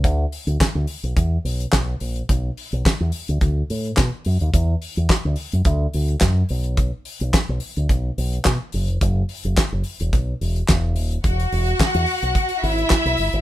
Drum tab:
HH |x-oxx-oxx-oxx-ox|x-oxx-oxx-oxx-ox|x-oxx-oxx-oxx-ox|x-oxx-oxx-oxx-ox|
CP |----x-------x---|----x-------x---|----x-------x---|----x-------x---|
SD |----o-------o---|----o-------o---|----o-------o---|----o-------o---|
BD |o---o---o---o---|o---o---o---o---|o---o---o---o---|o---o---o---o---|

HH |x-oxx-oxx-oxx-ox|xxoxxxoxxxoxxxox|
CP |----x-------x---|----x-------x---|
SD |----o-------o---|----o-------o---|
BD |o---o---o---o---|o---o---o---o---|